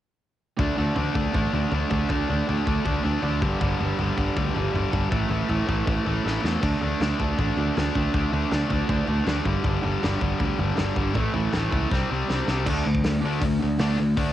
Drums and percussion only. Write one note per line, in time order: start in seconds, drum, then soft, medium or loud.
0.59 kick medium
0.59 floor tom medium
0.78 floor tom medium
0.96 floor tom medium
1.15 kick medium
1.15 floor tom medium
1.34 kick medium
1.34 floor tom medium
1.54 floor tom medium
1.72 floor tom medium
1.90 kick medium
1.90 floor tom medium
2.09 kick medium
2.09 floor tom medium
2.29 floor tom medium
2.49 floor tom medium
2.67 kick medium
2.67 floor tom medium
2.85 kick medium
2.85 floor tom medium
3.05 floor tom medium
3.23 floor tom medium
3.42 kick medium
3.42 floor tom medium
3.61 kick medium
3.61 floor tom medium
3.80 floor tom medium
3.99 floor tom medium
4.18 kick medium
4.18 floor tom medium
4.37 kick medium
4.37 floor tom medium
4.56 floor tom medium
4.76 floor tom medium
4.93 kick medium
4.93 floor tom medium
5.12 kick medium
5.12 floor tom medium
5.31 floor tom medium
5.49 floor tom medium
5.68 kick medium
5.68 floor tom medium
5.87 kick medium
5.87 floor tom medium
6.06 floor tom medium
6.27 snare medium
6.45 snare medium
6.63 kick medium
6.63 floor tom medium
6.63 crash medium
6.82 floor tom medium
7.01 snare loud
7.01 floor tom medium
7.20 kick medium
7.20 floor tom medium
7.38 kick medium
7.38 floor tom medium
7.58 floor tom medium
7.77 snare loud
7.77 floor tom medium
7.95 kick medium
7.95 floor tom medium
8.14 kick medium
8.14 floor tom medium
8.33 floor tom medium
8.51 snare medium
8.51 floor tom medium
8.70 kick medium
8.70 floor tom medium
8.89 kick medium
8.89 floor tom medium
9.07 floor tom medium
9.27 snare loud
9.27 floor tom medium
9.45 kick medium
9.45 floor tom medium
9.64 kick medium
9.64 floor tom medium
9.83 floor tom medium
10.03 snare loud
10.03 floor tom medium
10.21 kick medium
10.21 floor tom medium
10.40 kick medium
10.40 floor tom medium
10.59 floor tom medium
10.77 snare loud
10.77 floor tom medium
10.96 kick medium
10.96 floor tom medium
11.15 kick medium
11.15 floor tom medium
11.34 floor tom medium
11.53 snare loud
11.53 floor tom medium
11.72 kick medium
11.72 floor tom medium
11.91 kick medium
11.91 snare soft
12.30 snare medium
12.48 snare medium
12.66 kick medium
12.66 crash medium
12.95 kick medium
13.04 snare loud
13.04 open hi-hat soft
13.41 kick medium
13.41 open hi-hat medium
13.79 snare loud
13.79 open hi-hat medium
14.17 kick medium
14.17 open hi-hat soft